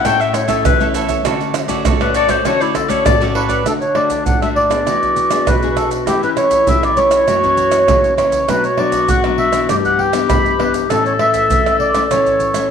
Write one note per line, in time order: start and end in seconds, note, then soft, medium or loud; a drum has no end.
0.00 0.44 A3 medium
0.00 0.44 C#4 medium
0.00 0.45 E4 medium
0.04 0.62 A2 medium
0.04 0.18 E4 medium
0.04 0.19 A4 soft
0.04 0.19 C#5 medium
0.04 0.18 E5 soft
0.04 0.23 G5 loud
0.04 pandeiro medium
0.04 tamborim medium
0.04 maracas medium
0.04 surdo medium
0.20 0.33 A4 medium
0.20 0.34 C#5 medium
0.20 0.34 E5 medium
0.20 0.35 E5 medium
0.20 pandeiro soft
0.20 maracas soft
0.34 0.51 C#5 medium
0.34 muted cavaquinho stroke soft
0.34 pandeiro medium
0.34 tamborim medium
0.34 maracas medium
0.48 0.74 A3 medium
0.48 0.74 C#4 medium
0.48 0.75 E4 medium
0.48 0.65 A4 medium
0.48 0.79 A4 medium
0.48 0.79 C#5 medium
0.48 0.78 E5 medium
0.48 pandeiro medium
0.48 maracas medium
0.48 surdo soft
0.65 1.22 E3 medium
0.65 0.83 B4 medium
0.65 pandeiro medium
0.65 tamborim medium
0.65 maracas medium
0.65 surdo loud
0.80 1.20 A3 medium
0.80 1.21 C#4 medium
0.80 1.21 E4 medium
0.80 0.93 A4 medium
0.80 0.94 C#5 medium
0.80 0.94 E5 medium
0.80 pandeiro soft
0.80 maracas soft
0.94 1.08 E4 medium
0.94 1.09 A4 medium
0.94 1.09 C#5 medium
0.94 1.07 E5 medium
0.94 pandeiro medium
0.94 maracas medium
1.08 1.24 A4 medium
1.08 1.24 C#5 medium
1.08 1.23 E5 medium
1.08 pandeiro medium
1.08 maracas medium
1.08 surdo soft
1.24 1.82 D3 medium
1.24 1.65 A3 medium
1.24 1.66 C#4 medium
1.24 1.53 F#4 medium
1.24 1.66 F#4 medium
1.24 1.54 A4 soft
1.24 1.54 C#5 medium
1.24 1.55 D5 medium
1.24 pandeiro medium
1.24 tamborim medium
1.24 maracas medium
1.24 surdo medium
1.41 pandeiro soft
1.41 maracas soft
1.54 muted cavaquinho stroke soft
1.54 pandeiro medium
1.54 tamborim medium
1.54 maracas medium
1.68 1.94 A3 medium
1.68 1.95 C#4 medium
1.68 1.95 F#4 medium
1.68 1.84 A4 medium
1.68 1.84 C#5 medium
1.68 1.83 D5 medium
1.68 pandeiro medium
1.68 maracas medium
1.68 surdo soft
1.85 2.42 A2 medium
1.85 1.99 F#4 soft
1.85 2.00 A4 medium
1.85 2.00 C#5 medium
1.85 2.00 D5 medium
1.85 pandeiro medium
1.85 tamborim medium
1.85 maracas medium
1.85 surdo loud
2.00 2.26 A3 medium
2.00 2.26 C#4 medium
2.00 2.26 F#4 medium
2.00 2.14 A4 medium
2.00 2.17 B4 medium
2.00 2.15 C#5 medium
2.00 2.14 D5 medium
2.00 pandeiro soft
2.00 tamborim medium
2.00 maracas soft
2.14 2.29 F#4 medium
2.14 2.29 A4 medium
2.14 2.28 C#5 medium
2.14 2.31 D5 loud
2.14 2.27 D5 medium
2.14 pandeiro medium
2.14 maracas medium
2.28 2.40 A3 medium
2.28 2.40 C#4 medium
2.28 2.40 F#4 medium
2.28 2.45 A4 medium
2.28 2.48 C5 medium
2.28 2.44 C#5 medium
2.28 2.43 D5 medium
2.28 pandeiro medium
2.28 tamborim medium
2.28 maracas medium
2.28 surdo soft
2.45 3.03 D3 medium
2.45 2.86 A3 medium
2.45 2.86 C#4 medium
2.45 2.59 F#4 medium
2.45 2.86 F#4 medium
2.45 2.60 A4 medium
2.45 2.63 C#5 loud
2.45 2.60 C#5 medium
2.45 2.59 D5 medium
2.45 pandeiro medium
2.45 tamborim medium
2.45 maracas medium
2.45 surdo medium
2.60 2.77 E4 medium
2.60 2.74 A4 medium
2.60 2.74 C#5 medium
2.60 2.74 D5 medium
2.60 pandeiro soft
2.60 maracas soft
2.75 2.91 A4 medium
2.75 muted cavaquinho stroke soft
2.75 pandeiro medium
2.75 tamborim medium
2.75 maracas medium
2.75 surdo soft
2.88 3.15 A3 medium
2.88 3.15 C#4 medium
2.88 3.16 F#4 medium
2.88 3.20 A4 medium
2.88 3.05 C#5 medium
2.88 3.19 C#5 medium
2.88 3.19 D5 medium
2.88 pandeiro medium
2.88 maracas medium
2.88 surdo soft
3.05 3.63 A2 medium
3.05 3.24 D5 loud
3.05 pandeiro medium
3.05 tamborim medium
3.05 maracas medium
3.05 surdo loud
3.21 3.61 A3 medium
3.21 3.61 C#4 medium
3.21 3.62 F#4 medium
3.21 3.34 A4 medium
3.21 3.35 C#5 medium
3.21 3.35 D5 medium
3.21 pandeiro soft
3.21 maracas soft
3.34 3.49 F#4 medium
3.34 3.49 A4 medium
3.34 3.67 B4 medium
3.34 3.49 C#5 medium
3.34 3.48 D5 medium
3.34 pandeiro medium
3.49 3.65 A4 medium
3.49 3.64 C#5 medium
3.49 3.64 D5 medium
3.49 pandeiro medium
3.49 maracas medium
3.49 surdo soft
3.66 4.23 D3 medium
3.66 3.84 A3 soft
3.66 4.88 D4 medium
3.66 3.84 D4 soft
3.66 3.84 F#4 soft
3.66 3.73 A4 medium
3.66 pandeiro medium
3.66 tamborim medium
3.66 maracas medium
3.66 surdo medium
3.81 3.97 C#5 medium
3.81 pandeiro soft
3.81 maracas soft
3.95 4.24 A3 medium
3.95 4.24 D4 medium
3.95 4.24 F#4 medium
3.95 4.24 D5 medium
3.95 pandeiro medium
3.95 tamborim medium
4.10 pandeiro medium
4.10 maracas medium
4.10 surdo soft
4.26 4.84 A2 medium
4.26 4.40 F#5 medium
4.26 pandeiro medium
4.26 maracas medium
4.26 surdo medium
4.42 4.67 A3 medium
4.42 4.67 D4 medium
4.42 4.67 F#4 medium
4.42 4.48 E5 medium
4.42 pandeiro soft
4.42 tamborim medium
4.42 maracas soft
4.56 5.49 D5 medium
4.56 pandeiro medium
4.69 5.26 B3 medium
4.69 5.26 D4 soft
4.69 5.26 G#4 medium
4.69 pandeiro medium
4.69 tamborim medium
4.69 maracas medium
4.86 5.44 E3 medium
4.86 6.08 F#4 medium
4.86 pandeiro medium
4.86 tamborim medium
4.86 maracas medium
4.86 surdo medium
5.03 pandeiro soft
5.03 maracas soft
5.03 surdo soft
5.16 pandeiro soft
5.16 maracas medium
5.16 surdo soft
5.30 5.56 B3 medium
5.30 5.57 D4 medium
5.30 5.57 G#4 medium
5.30 pandeiro medium
5.30 tamborim medium
5.30 maracas medium
5.47 6.04 B2 medium
5.47 5.69 B4 medium
5.47 pandeiro medium
5.47 tamborim medium
5.47 maracas medium
5.47 surdo loud
5.62 6.05 B3 medium
5.62 6.05 D4 medium
5.62 6.06 G#4 medium
5.62 pandeiro soft
5.62 maracas soft
5.70 5.77 B4 medium
5.76 5.90 A4 medium
5.76 pandeiro medium
5.76 tamborim medium
5.76 maracas medium
5.91 pandeiro medium
5.91 maracas medium
5.91 surdo soft
6.07 6.65 E3 medium
6.07 6.16 A3 soft
6.07 6.17 C#4 medium
6.07 7.29 E4 medium
6.07 6.21 G4 medium
6.07 6.17 G4 medium
6.07 pandeiro medium
6.07 tamborim medium
6.07 maracas medium
6.07 surdo medium
6.23 6.63 A3 medium
6.23 6.63 C#4 medium
6.23 6.63 G4 medium
6.23 6.30 B4 medium
6.23 pandeiro soft
6.23 maracas soft
6.37 6.68 C#5 medium
6.37 pandeiro medium
6.37 tamborim medium
6.37 maracas medium
6.51 pandeiro medium
6.51 maracas medium
6.51 surdo soft
6.67 7.25 E3 medium
6.67 6.93 A3 medium
6.67 6.93 C#4 soft
6.67 6.93 G4 medium
6.67 6.83 E5 medium
6.67 pandeiro medium
6.67 maracas medium
6.67 surdo medium
6.83 6.99 D5 medium
6.83 pandeiro soft
6.83 tamborim medium
6.83 maracas soft
6.97 7.25 A3 soft
6.97 7.25 C#4 soft
6.97 7.25 G4 medium
6.97 8.14 C#5 loud
6.97 pandeiro medium
6.97 maracas medium
7.11 pandeiro medium
7.11 tamborim medium
7.11 maracas medium
7.27 7.85 F#2 medium
7.27 7.38 E3 soft
7.27 7.38 A#3 medium
7.27 7.38 C#4 medium
7.27 8.21 F#4 medium
7.27 pandeiro medium
7.27 tamborim medium
7.27 maracas medium
7.27 surdo medium
7.43 7.83 E3 medium
7.43 7.84 A#3 medium
7.43 7.84 C#4 medium
7.43 pandeiro soft
7.43 maracas soft
7.43 surdo soft
7.57 pandeiro soft
7.57 maracas medium
7.57 surdo soft
7.71 pandeiro medium
7.71 tamborim medium
7.71 maracas medium
7.88 8.45 C#3 medium
7.88 8.13 E3 medium
7.88 8.13 A#3 medium
7.88 8.14 C#4 medium
7.88 pandeiro medium
7.88 tamborim medium
7.88 maracas medium
7.88 surdo loud
8.04 pandeiro soft
8.04 maracas soft
8.17 8.46 E3 medium
8.17 8.46 A#3 soft
8.17 8.46 C#4 medium
8.17 8.49 C#5 medium
8.17 pandeiro medium
8.17 tamborim medium
8.17 maracas medium
8.17 surdo soft
8.32 pandeiro medium
8.32 maracas medium
8.32 surdo soft
8.48 9.06 B2 medium
8.48 8.66 F#3 medium
8.48 8.67 B3 soft
8.48 8.67 D4 medium
8.48 9.71 F#4 medium
8.48 8.64 B4 medium
8.48 pandeiro medium
8.48 tamborim medium
8.48 maracas medium
8.48 surdo medium
8.64 8.79 C#5 medium
8.64 pandeiro soft
8.64 maracas soft
8.78 9.07 F#3 soft
8.78 9.07 B3 medium
8.78 9.07 D4 medium
8.78 9.09 D5 medium
8.78 pandeiro medium
8.78 tamborim medium
8.92 pandeiro medium
8.92 maracas medium
8.92 surdo soft
9.09 9.66 B2 medium
9.09 9.22 F#5 medium
9.09 pandeiro medium
9.09 maracas medium
9.09 surdo medium
9.24 9.49 F#3 medium
9.24 9.50 B3 medium
9.24 9.50 D4 medium
9.24 pandeiro soft
9.24 tamborim medium
9.24 maracas soft
9.38 9.67 E5 medium
9.38 pandeiro medium
9.52 10.09 E3 medium
9.52 10.09 B3 medium
9.52 10.09 D4 medium
9.52 pandeiro medium
9.52 tamborim medium
9.52 maracas medium
9.69 10.26 G2 medium
9.69 10.92 G4 loud
9.69 9.76 D5 medium
9.69 pandeiro medium
9.69 tamborim medium
9.69 maracas medium
9.69 surdo medium
9.85 10.00 F#5 medium
9.85 pandeiro soft
9.85 maracas soft
9.85 surdo soft
9.99 10.13 G5 medium
9.99 pandeiro medium
9.99 surdo soft
10.13 10.54 E3 medium
10.13 10.54 B3 medium
10.13 10.54 D4 medium
10.13 pandeiro medium
10.13 tamborim medium
10.13 maracas medium
10.29 10.87 G2 medium
10.29 10.61 B5 loud
10.29 pandeiro medium
10.29 tamborim medium
10.29 maracas medium
10.29 surdo loud
10.46 pandeiro soft
10.46 maracas soft
10.59 10.85 E3 medium
10.59 10.85 B3 medium
10.59 10.85 D4 medium
10.59 10.73 B4 medium
10.59 pandeiro medium
10.59 tamborim medium
10.74 pandeiro medium
10.74 maracas medium
10.74 surdo soft
10.90 11.47 A2 medium
10.90 11.15 E3 soft
10.90 11.15 A3 soft
10.90 11.16 C#4 medium
10.90 11.04 A4 medium
10.90 12.71 A4 loud
10.90 pandeiro medium
10.90 tamborim medium
10.90 maracas medium
10.90 surdo medium
11.06 11.13 C#5 medium
11.06 pandeiro soft
11.06 maracas soft
11.19 11.49 E3 medium
11.19 11.61 A3 soft
11.19 11.61 C#4 medium
11.19 11.76 E5 medium
11.19 pandeiro medium
11.19 tamborim medium
11.34 pandeiro medium
11.34 maracas medium
11.34 surdo soft
11.50 11.65 E3 medium
11.50 pandeiro medium
11.50 maracas medium
11.50 surdo medium
11.66 11.91 E3 medium
11.66 11.91 A3 medium
11.66 11.92 C#4 medium
11.66 pandeiro soft
11.66 tamborim medium
11.66 maracas soft
11.80 12.11 D5 medium
11.80 pandeiro medium
11.94 12.05 E3 medium
11.94 12.06 A3 soft
11.94 12.06 C#4 medium
11.94 pandeiro medium
11.94 tamborim medium
11.94 maracas medium
12.11 12.68 A2 medium
12.11 12.52 E3 medium
12.11 12.52 A3 soft
12.11 12.52 C#4 medium
12.11 12.67 C#5 medium
12.11 pandeiro medium
12.11 tamborim medium
12.11 maracas medium
12.11 surdo medium
12.26 pandeiro soft
12.26 maracas soft
12.26 surdo soft
12.40 pandeiro soft
12.40 maracas medium
12.40 surdo soft
12.54 12.71 E3 medium
12.54 12.71 A3 medium
12.54 12.71 C#4 medium
12.54 pandeiro medium
12.54 tamborim medium
12.54 maracas medium